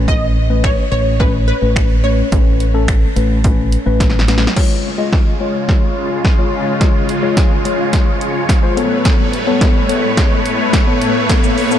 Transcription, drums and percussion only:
0.08 kick
0.64 finger snap, kick
1.20 kick
1.76 finger snap, kick
2.32 kick, closed hi-hat
2.60 closed hi-hat
2.88 finger snap, kick, closed hi-hat
3.17 closed hi-hat
3.44 kick, closed hi-hat
3.72 closed hi-hat
4.00 kick, snare, closed hi-hat
4.10 snare
4.19 snare
4.28 snare, closed hi-hat
4.38 snare
4.47 snare
4.57 kick, snare, crash
5.13 kick, snare
5.69 kick, snare
6.25 kick, snare
6.81 kick, snare, closed hi-hat
7.09 closed hi-hat
7.37 kick, snare, closed hi-hat
7.65 closed hi-hat
7.93 kick, snare, closed hi-hat
8.21 closed hi-hat
8.49 kick, snare, closed hi-hat
8.77 closed hi-hat
9.05 kick, snare, closed hi-hat
9.33 closed hi-hat
9.61 kick, snare, closed hi-hat
9.89 closed hi-hat
10.17 kick, snare, closed hi-hat
10.46 closed hi-hat
10.73 kick, snare, closed hi-hat
11.02 closed hi-hat
11.30 kick, snare, closed hi-hat, shaker
11.44 shaker
11.58 open hi-hat, shaker
11.71 shaker

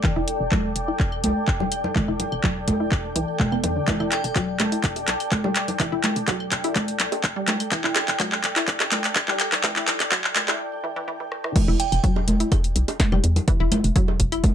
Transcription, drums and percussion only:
0.04 kick, clap
0.28 closed hi-hat
0.52 kick, clap, high conga, claves
0.76 closed hi-hat
1.00 kick, clap
1.12 claves
1.24 closed hi-hat, high conga
1.48 kick, clap
1.60 low conga
1.72 closed hi-hat, claves
1.84 low conga
1.96 kick, clap, high conga
2.20 closed hi-hat, low conga
2.32 claves
2.44 kick, clap
2.68 kick, closed hi-hat, high conga
2.92 kick, clap, claves
3.16 closed hi-hat
3.40 kick, clap, high conga
3.52 claves
3.64 closed hi-hat, low conga
3.88 kick, clap, closed hi-hat, high conga
4.00 claves
4.12 clap, closed hi-hat, high bongo
4.24 closed hi-hat
4.36 kick, clap, closed hi-hat
4.60 clap, closed hi-hat, high bongo, high conga, claves
4.72 closed hi-hat
4.84 kick, clap, closed hi-hat
4.96 closed hi-hat, high bongo
5.08 clap, closed hi-hat
5.20 closed hi-hat, claves
5.32 kick, clap, closed hi-hat, high conga
5.44 high bongo, low conga
5.56 clap, closed hi-hat
5.68 closed hi-hat, low conga
5.80 kick, clap, closed hi-hat, high bongo, claves
6.04 clap, closed hi-hat, high conga, low conga
6.16 closed hi-hat
6.28 kick, clap, closed hi-hat, high bongo
6.40 claves
6.52 kick, clap, closed hi-hat
6.64 closed hi-hat, high bongo
6.76 kick, clap, closed hi-hat, high conga
6.88 closed hi-hat
7.00 clap, closed hi-hat, claves
7.12 closed hi-hat, high bongo
7.24 kick, clap, closed hi-hat
7.48 clap, closed hi-hat, high bongo, high conga, low conga
7.60 closed hi-hat, claves
7.72 kick, clap, closed hi-hat
7.84 clap
7.96 clap, closed hi-hat, high bongo
8.08 clap, closed hi-hat
8.20 kick, clap, closed hi-hat, high conga, claves
8.32 clap, high bongo
8.44 clap, closed hi-hat
8.56 clap, closed hi-hat
8.68 kick, clap, closed hi-hat
8.80 clap, closed hi-hat, high bongo, claves
8.92 clap, closed hi-hat, high conga
9.04 clap, closed hi-hat
9.16 kick, clap, closed hi-hat, high bongo
9.28 clap, low conga
9.40 clap, closed hi-hat, claves
9.52 clap, closed hi-hat, low conga
9.64 kick, clap, closed hi-hat, high bongo, high conga
9.76 clap, closed hi-hat
9.88 clap, closed hi-hat, low conga
10.00 clap, closed hi-hat, high bongo, claves
10.12 kick, clap, closed hi-hat
10.24 clap
10.36 kick, clap, closed hi-hat, high conga
10.48 clap, closed hi-hat, high bongo
11.32 cross-stick
11.44 cross-stick
11.56 kick, closed hi-hat, crash, high conga
11.80 closed hi-hat
11.92 closed hi-hat, claves
12.04 kick, closed hi-hat
12.16 high bongo
12.28 closed hi-hat, high conga
12.40 closed hi-hat
12.52 kick, closed hi-hat, high bongo, claves
12.64 closed hi-hat
12.76 closed hi-hat
12.88 closed hi-hat, high bongo
13.00 kick, snare, closed hi-hat, high conga
13.12 low conga, claves
13.24 closed hi-hat
13.36 closed hi-hat, low conga
13.48 kick, closed hi-hat
13.72 closed hi-hat, high conga, low conga, claves
13.84 closed hi-hat
13.96 kick, closed hi-hat
14.08 high bongo
14.20 kick, closed hi-hat
14.32 closed hi-hat, claves
14.44 kick, closed hi-hat, high conga

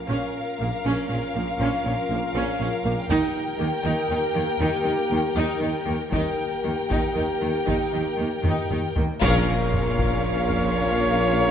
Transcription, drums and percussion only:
3.10 taiko
6.12 taiko
6.91 taiko
7.68 taiko
8.44 taiko low-mid
8.71 taiko low-mid
8.96 taiko low
9.21 concert bass drum, taiko, crash
9.74 taiko low-mid
9.99 taiko
10.49 taiko low-mid

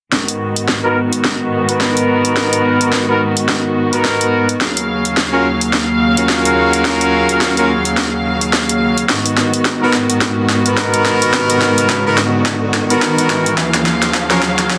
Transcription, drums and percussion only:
0.12 kick, snare
0.28 closed hi-hat
0.56 closed hi-hat
0.68 kick, snare
1.13 closed hi-hat
1.24 kick, snare
1.69 closed hi-hat
1.80 kick, snare
1.97 closed hi-hat
2.25 closed hi-hat
2.36 kick, snare
2.53 closed hi-hat
2.81 closed hi-hat
2.92 kick, snare
3.37 closed hi-hat
3.49 kick, snare
3.93 closed hi-hat
4.05 kick, snare
4.21 closed hi-hat
4.49 closed hi-hat
4.61 kick, snare
4.77 closed hi-hat
5.05 closed hi-hat
5.17 kick, snare
5.61 closed hi-hat
5.73 kick, snare
6.17 closed hi-hat
6.29 kick, snare
6.45 closed hi-hat
6.73 closed hi-hat
6.85 kick, snare
7.01 closed hi-hat
7.29 closed hi-hat
7.41 kick, snare
7.57 closed hi-hat
7.85 closed hi-hat
7.97 kick, snare
8.41 closed hi-hat
8.53 kick, snare
8.69 closed hi-hat
8.98 closed hi-hat
9.09 kick, snare
9.26 closed hi-hat
9.37 snare
9.54 closed hi-hat
9.65 kick, snare
9.93 snare
10.10 closed hi-hat
10.21 kick, snare
10.49 snare
10.66 closed hi-hat
10.77 kick, snare
10.94 closed hi-hat
11.05 snare
11.22 closed hi-hat
11.33 kick, snare
11.50 closed hi-hat
11.61 snare
11.78 closed hi-hat
11.89 kick, snare
12.18 snare
12.46 kick, snare
12.74 snare
12.90 closed hi-hat
13.02 kick, snare
13.18 closed hi-hat
13.30 snare
13.46 closed hi-hat
13.58 kick, snare
13.74 snare, closed hi-hat
13.86 snare
14.02 snare, closed hi-hat
14.14 kick, snare
14.30 snare
14.42 snare
14.59 snare, closed hi-hat
14.70 kick, snare

